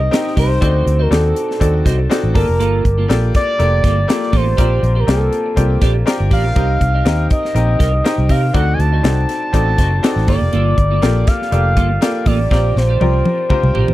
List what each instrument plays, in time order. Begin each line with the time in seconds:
Already playing: grand piano C4 D#4 G4 A#4 D#5, analog synth lead D#5
0.00 muted clean electric guitar stroke
0.11 grand piano C4 D#4 G4 A#4 D#5, muted clean electric guitar stroke, snare, closed hi-hat
0.25 muted clean electric guitar stroke, snare
0.36 fingered electric bass C2, clean electric guitar G4 A#4 D#5, analog synth lead C5, kick, open hi-hat
0.50 muted clean electric guitar stroke
0.61 fingered electric bass D2, grand piano C4 D#4 F#4 A4 D5, clean electric guitar F#4 C5 D#5, kick, closed hi-hat
0.86 fingered electric bass D2, muted clean electric guitar stroke, closed hi-hat
0.99 clean electric guitar F#4 C5 D#5, analog synth lead A#4
1.10 fingered electric bass D#2, grand piano C4 D#4 F#4 A4 D5, analog synth lead A4, muted clean electric guitar stroke, snare, closed hi-hat
1.24 muted clean electric guitar stroke
1.36 closed hi-hat
1.49 muted clean electric guitar stroke, snare
1.60 fingered electric bass D#2, grand piano C4 D#4 F#4 A4 D5, kick, closed hi-hat
1.74 muted clean electric guitar stroke
1.85 fingered electric bass C2, clean electric guitar F#4 C5 D#5, kick, snare, closed hi-hat
1.99 muted clean electric guitar stroke
2.10 grand piano C4 D#4 F#4 A4 D5, muted clean electric guitar stroke, snare, closed hi-hat
2.23 fingered electric bass A1, muted clean electric guitar stroke
2.34 fingered electric bass G1, clean electric guitar A#3 F4 A4, grand piano A#3 F4 G4 D5 A5, analog synth lead A#4, kick, open hi-hat
2.48 fingered electric bass F1, muted clean electric guitar stroke
2.60 fingered electric bass G1, clean electric guitar A#3 F4 A4, closed hi-hat
2.84 fingered electric bass G1, muted clean electric guitar stroke, kick, closed hi-hat
2.98 clean electric guitar A#3 F4 A4
3.08 fingered electric bass A#1, grand piano A#3 F4 G4 A4 D5, snare, closed hi-hat
3.22 muted clean electric guitar stroke
3.35 analog synth lead D5, kick, snare, closed hi-hat
3.47 muted clean electric guitar stroke
3.59 fingered electric bass F1, grand piano A#3 F4 G4 A4 D5, closed hi-hat
3.72 muted clean electric guitar stroke
3.84 fingered electric bass G1, clean electric guitar A#3 F4 A4, kick, snare, closed hi-hat
3.97 muted clean electric guitar stroke
4.08 grand piano A#3 F4 G4 A4 D5, muted clean electric guitar stroke, snare, closed hi-hat
4.22 muted clean electric guitar stroke, snare
4.32 fingered electric bass A1, clean electric guitar A#3 F4 A4, analog synth lead C5, kick, open hi-hat
4.46 muted clean electric guitar stroke
4.57 fingered electric bass A#1, grand piano C4 F4 G4 A#4 D5, clean electric guitar G4 C5 D5, kick, closed hi-hat
4.83 fingered electric bass A#1, muted clean electric guitar stroke, closed hi-hat
4.95 clean electric guitar G4 C5 D5
5.00 analog synth lead A#4
5.07 fingered electric bass C2, grand piano A#3 C4 F4 G4 D5, muted clean electric guitar stroke, snare, closed hi-hat
5.11 analog synth lead A4
5.21 muted clean electric guitar stroke
5.33 closed hi-hat
5.46 muted clean electric guitar stroke
5.56 fingered electric bass C2, grand piano A#3 C4 F4 G4 D5, kick, closed hi-hat
5.70 muted clean electric guitar stroke
5.81 fingered electric bass A#1, clean electric guitar G4 C5 D5, kick, snare, closed hi-hat
5.95 muted clean electric guitar stroke
6.06 grand piano C4 F4 G4 A#4 D5, muted clean electric guitar stroke, snare, closed hi-hat
6.19 fingered electric bass G1, muted clean electric guitar stroke
6.31 fingered electric bass A1, clean electric guitar G4 C5 D5, analog synth lead F5, kick, open hi-hat
6.44 fingered electric bass A#1, muted clean electric guitar stroke
6.55 fingered electric bass C2, grand piano C4 D#4 G4 A#4 D#5, clean electric guitar G4 A#4 D#5, kick, closed hi-hat
6.81 fingered electric bass C2, muted clean electric guitar stroke, kick, closed hi-hat
6.94 clean electric guitar G4 A#4 D#5
7.05 fingered electric bass D#2, grand piano C4 D#4 G4 A#4 D#5, muted clean electric guitar stroke, snare, closed hi-hat
7.19 muted clean electric guitar stroke
7.30 analog synth lead D#5, kick, closed hi-hat
7.43 muted clean electric guitar stroke, snare
7.54 fingered electric bass A#1, grand piano C4 D#4 G4 A#4 D#5, closed hi-hat
7.68 muted clean electric guitar stroke
7.79 fingered electric bass C2, clean electric guitar G4 A#4 D#5, kick, snare, closed hi-hat
7.92 muted clean electric guitar stroke
8.04 grand piano C4 D#4 G4 A#4 D#5, muted clean electric guitar stroke, snare, closed hi-hat
8.18 fingered electric bass C2, muted clean electric guitar stroke
8.29 fingered electric bass C3, clean electric guitar G4 A#4 D#5, analog synth lead F5, kick, open hi-hat
8.43 muted clean electric guitar stroke
8.53 fingered electric bass D2, grand piano C4 D#4 F#4 A4 D5, clean electric guitar F#4 C5 D#5, analog synth lead F#5, kick, closed hi-hat
8.74 analog synth lead G#5
8.79 fingered electric bass D2, analog synth lead A5, muted clean electric guitar stroke, closed hi-hat
8.93 clean electric guitar F#4 C5 D#5
9.03 fingered electric bass C2, grand piano C4 D#4 F#4 A4 D5, snare, closed hi-hat
9.17 muted clean electric guitar stroke
9.29 snare, closed hi-hat
9.42 muted clean electric guitar stroke
9.53 fingered electric bass A1, grand piano C4 D#4 F#4 A4 D5, kick, closed hi-hat
9.67 muted clean electric guitar stroke
9.78 fingered electric bass F#1, clean electric guitar F#4 C5 D#5, kick, snare, closed hi-hat
9.92 muted clean electric guitar stroke
10.03 grand piano C4 D#4 F#4 A4 D5, muted clean electric guitar stroke, snare, closed hi-hat
10.16 fingered electric bass A1, muted clean electric guitar stroke, snare
10.27 fingered electric bass G1, grand piano A#3 F4 G4 A4 D5, clean electric guitar A#3 F4 A4, analog synth lead D5, kick, open hi-hat
10.41 fingered electric bass F1, muted clean electric guitar stroke
10.53 fingered electric bass G1, clean electric guitar A#3 F4 A4, closed hi-hat
10.77 fingered electric bass G1, muted clean electric guitar stroke, kick, closed hi-hat
10.91 clean electric guitar A#3 F4 A4
11.02 fingered electric bass A#1, grand piano A#3 F4 G4 A4 D5, muted clean electric guitar stroke, snare, closed hi-hat
11.16 muted clean electric guitar stroke
11.27 analog synth lead F5, kick, snare, closed hi-hat
11.40 muted clean electric guitar stroke, snare
11.51 fingered electric bass F1, grand piano A#3 F4 G4 A4 D5, closed hi-hat
11.65 muted clean electric guitar stroke
11.77 fingered electric bass G1, clean electric guitar A#3 F4 A4, kick, closed hi-hat
11.90 muted clean electric guitar stroke
12.01 grand piano A#3 F4 G4 A4 D5, muted clean electric guitar stroke, snare, closed hi-hat
12.15 muted clean electric guitar stroke
12.26 fingered electric bass A1, clean electric guitar A#3 F4 A4, analog synth lead D5, kick, open hi-hat
12.39 muted clean electric guitar stroke
12.51 fingered electric bass A#1, grand piano C4 F4 G4 A#4 D5, clean electric guitar G4 C5 D5, kick, snare
12.76 fingered electric bass A#1, analog synth lead C5, muted clean electric guitar stroke, snare
12.89 clean electric guitar G4 C5 D5
13.00 fingered electric bass C2, grand piano C4 F4 G4 A#4 D5, muted clean electric guitar stroke, high tom
13.14 muted clean electric guitar stroke
13.25 high tom
13.38 muted clean electric guitar stroke
13.49 grand piano C4 F4 G4 A#4 C5, kick, mid tom
13.63 fingered electric bass C2, muted clean electric guitar stroke, mid tom
13.74 fingered electric bass A#1, clean electric guitar G4 C5 D5, mid tom
13.88 fingered electric bass A1, muted clean electric guitar stroke, mid tom